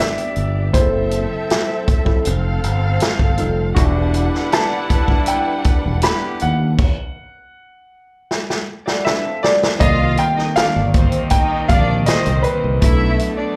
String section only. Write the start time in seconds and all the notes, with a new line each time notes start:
Already playing: B3 G4 D5
0.74 C4 A4 E5
2.25 C4 A4 F5
3.75 D4 B4 F#5
9.80 F4 F5
10.36 D#4 D#5
10.55 D4 D5
10.93 C4 C5
11.31 D#4 D#5
11.68 D4 D5
12.06 C4 C5
12.81 E4 E5
13.38 D4 D5